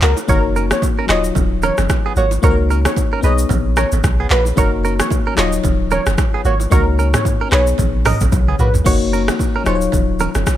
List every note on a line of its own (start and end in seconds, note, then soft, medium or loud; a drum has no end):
0.00 0.15 C#2 medium
0.00 0.12 A#3 medium
0.00 0.25 B3 medium
0.00 0.26 D#4 medium
0.00 0.11 F#4 medium
0.00 0.26 G#4 medium
0.00 0.16 A#4 medium
0.00 0.27 C#5 medium
0.00 clap medium
0.00 shaker soft
0.17 high bongo medium
0.17 shaker medium
0.28 0.73 F#1 loud
0.28 1.09 A#3 medium
0.28 1.07 D#4 medium
0.28 1.09 F#4 medium
0.28 0.39 F#4 medium
0.28 0.42 A#4 loud
0.28 0.38 C#5 loud
0.28 1.10 C#5 medium
0.28 kick loud
0.28 low conga medium
0.28 shaker medium
0.56 0.65 C#4 medium
0.56 0.65 A#4 medium
0.56 shaker soft
0.71 0.81 C#5 medium
0.71 cross-stick loud
0.71 low bongo medium
0.71 shaker medium
0.82 kick medium
0.82 high bongo medium
0.82 low bongo medium
0.82 shaker medium
0.99 1.05 C#4 medium
0.99 1.05 A#4 medium
1.07 1.31 D#1 medium
1.07 2.39 F#3 medium
1.07 2.40 D#4 medium
1.07 2.41 F4 medium
1.07 1.19 F4 medium
1.07 1.18 C#5 medium
1.07 1.23 D#5 medium
1.07 cross-stick loud
1.07 clap loud
1.07 shaker medium
1.12 2.42 C#5 medium
1.24 shaker medium
1.35 1.71 D#1 loud
1.35 kick loud
1.35 low bongo medium
1.35 low conga medium
1.35 shaker medium
1.62 1.72 C#4 medium
1.62 1.72 A#4 medium
1.62 1.76 C#5 medium
1.62 high bongo medium
1.62 low conga medium
1.62 shaker medium
1.78 1.88 F#1 medium
1.78 cross-stick medium
1.78 low bongo medium
1.78 shaker medium
1.89 kick loud
1.89 cross-stick loud
1.89 high bongo medium
1.89 shaker medium
2.06 2.12 B3 soft
2.06 2.12 G#4 medium
2.16 2.38 G#1 medium
2.16 2.26 A#3 medium
2.16 2.25 F#4 medium
2.16 2.30 C#5 medium
2.16 shaker soft
2.31 high bongo medium
2.31 shaker medium
2.42 2.87 C#2 loud
2.42 3.23 A#3 medium
2.42 3.21 D#4 medium
2.42 3.24 F#4 medium
2.42 2.53 F#4 medium
2.42 2.57 A#4 loud
2.42 2.51 C5 medium
2.42 2.52 C#5 loud
2.42 kick loud
2.42 low conga medium
2.42 shaker medium
2.51 3.25 C#5 medium
2.70 2.80 C#4 medium
2.70 2.79 A#4 medium
2.70 shaker medium
2.85 2.95 C#5 medium
2.85 cross-stick loud
2.85 low bongo medium
2.85 shaker medium
2.96 kick medium
2.96 high bongo medium
2.96 low bongo medium
2.96 shaker medium
3.13 3.20 C#4 medium
3.13 3.19 A#4 medium
3.21 3.45 B1 loud
3.21 4.53 B3 medium
3.21 4.54 D#4 medium
3.21 4.55 G#4 medium
3.21 3.33 B4 medium
3.21 3.37 D#5 medium
3.21 shaker medium
3.25 3.33 D#4 medium
3.25 4.56 C#5 medium
3.38 shaker medium
3.49 3.85 A#1 loud
3.49 kick loud
3.49 low bongo medium
3.49 low conga medium
3.49 shaker medium
3.77 3.87 C#4 medium
3.77 3.86 A#4 medium
3.77 3.91 C#5 medium
3.77 cross-stick loud
3.77 high bongo medium
3.77 low conga medium
3.77 shaker medium
3.92 4.02 G#1 medium
3.92 low bongo medium
3.92 shaker medium
4.04 4.26 B1 loud
4.04 kick loud
4.04 cross-stick loud
4.04 high bongo medium
4.04 shaker medium
4.20 4.27 B3 medium
4.20 4.26 G#4 medium
4.30 4.52 A#1 medium
4.30 4.40 A#3 medium
4.30 4.40 F#4 medium
4.30 4.44 B4 medium
4.30 clap loud
4.30 shaker soft
4.45 high bongo medium
4.45 shaker medium
4.56 5.01 F#1 loud
4.56 5.37 A#3 medium
4.56 5.35 D#4 medium
4.56 5.38 F#4 medium
4.56 4.67 F#4 medium
4.56 4.71 A#4 loud
4.56 4.67 C#5 loud
4.56 5.38 C#5 medium
4.56 kick loud
4.56 low conga medium
4.56 shaker medium
4.85 4.94 C#4 medium
4.85 4.93 A#4 medium
4.85 shaker medium
5.00 5.09 C#5 medium
5.00 cross-stick loud
5.00 low bongo medium
5.00 shaker medium
5.11 kick medium
5.11 high bongo medium
5.11 low bongo medium
5.11 shaker medium
5.27 5.34 C#4 medium
5.27 5.33 A#4 medium
5.35 5.60 D#1 loud
5.35 6.68 F#3 medium
5.35 6.68 D#4 medium
5.35 6.69 F4 medium
5.35 5.47 C#5 medium
5.35 5.51 D#5 medium
5.35 cross-stick loud
5.35 clap loud
5.35 shaker medium
5.39 5.47 F4 medium
5.39 6.70 C#5 medium
5.52 shaker medium
5.64 5.99 D#1 loud
5.64 kick loud
5.64 low bongo medium
5.64 low conga medium
5.64 shaker medium
5.91 6.01 C#4 medium
5.91 6.00 A#4 medium
5.91 6.05 C#5 medium
5.91 high bongo medium
5.91 low conga medium
5.91 shaker soft
6.06 6.16 F#1 medium
6.06 cross-stick loud
6.06 low bongo medium
6.06 shaker medium
6.18 kick loud
6.18 cross-stick loud
6.18 high bongo medium
6.18 shaker medium
6.34 6.41 B3 medium
6.34 6.40 G#4 medium
6.45 6.67 G#1 medium
6.45 6.55 A#3 medium
6.45 6.54 F#4 medium
6.45 6.59 C#5 medium
6.45 shaker soft
6.60 high bongo medium
6.60 shaker medium
6.70 7.16 C#2 loud
6.70 7.51 A#3 medium
6.70 7.50 D#4 medium
6.70 7.52 F#4 medium
6.70 6.81 F#4 medium
6.70 6.85 A#4 loud
6.70 6.81 C#5 loud
6.70 7.53 C#5 medium
6.70 kick loud
6.70 low conga medium
6.70 shaker medium
6.99 7.08 C#4 medium
6.99 7.08 A#4 medium
6.99 shaker medium
7.14 7.24 C#5 medium
7.14 cross-stick loud
7.14 mid tom medium
7.14 low bongo medium
7.14 shaker medium
7.25 kick medium
7.25 high bongo medium
7.25 low bongo medium
7.25 shaker medium
7.41 7.48 C#4 medium
7.41 7.47 A#4 medium
7.49 7.74 B1 loud
7.49 8.82 B3 medium
7.49 8.83 D#4 medium
7.49 7.62 D#4 medium
7.49 8.84 G#4 medium
7.49 7.61 B4 medium
7.49 7.66 C#5 medium
7.49 cross-stick loud
7.49 clap loud
7.49 shaker medium
7.54 8.85 C#5 medium
7.67 shaker medium
7.78 8.14 A#1 loud
7.78 kick loud
7.78 low bongo medium
7.78 low conga medium
7.78 shaker medium
8.05 8.15 C#4 medium
8.05 8.15 A#4 medium
8.05 8.19 D#5 medium
8.05 cross-stick loud
8.05 mid tom loud
8.05 open hi-hat soft
8.05 high bongo medium
8.05 low conga medium
8.05 shaker medium
8.20 8.30 G#1 medium
8.20 kick loud
8.20 low bongo medium
8.20 shaker medium
8.32 8.54 B1 medium
8.32 kick loud
8.32 high tom medium
8.32 high bongo medium
8.32 shaker medium
8.48 8.55 B3 medium
8.48 8.55 G#4 medium
8.48 mid tom medium
8.59 8.81 A#1 medium
8.59 8.69 A#3 medium
8.59 8.68 F#4 medium
8.59 8.73 B4 medium
8.59 mid tom medium
8.59 shaker soft
8.74 floor tom loud
8.74 high bongo medium
8.74 shaker medium
8.84 9.30 F#1 loud
8.84 9.66 A#3 medium
8.84 9.64 D#4 medium
8.84 9.66 F#4 medium
8.84 8.96 F#4 medium
8.84 8.95 C#5 loud
8.84 9.67 C#5 medium
8.84 kick loud
8.84 crash medium
8.84 low conga medium
8.84 shaker medium
9.13 9.22 C#4 medium
9.13 9.22 A#4 medium
9.13 shaker medium
9.28 cross-stick loud
9.28 low bongo medium
9.28 shaker medium
9.39 kick medium
9.39 high bongo medium
9.39 shaker medium
9.56 9.62 C#4 medium
9.56 9.62 A#4 medium
9.64 9.88 D#1 medium
9.64 10.57 F#3 medium
9.64 10.57 D#4 medium
9.64 10.57 F4 medium
9.64 9.76 C#5 medium
9.64 cross-stick medium
9.64 shaker medium
9.68 9.76 F4 medium
9.68 9.75 C5 medium
9.75 10.57 C#5 medium
9.81 shaker medium
9.92 10.28 D#1 medium
9.92 kick loud
9.92 low bongo medium
9.92 low conga medium
9.92 shaker medium
10.19 10.30 C#4 medium
10.19 10.29 A#4 medium
10.19 high bongo soft
10.19 low conga medium
10.19 shaker soft
10.35 10.45 F#1 medium
10.35 cross-stick medium
10.35 low bongo medium
10.35 shaker medium
10.47 kick medium
10.47 cross-stick loud
10.47 high bongo medium
10.47 shaker medium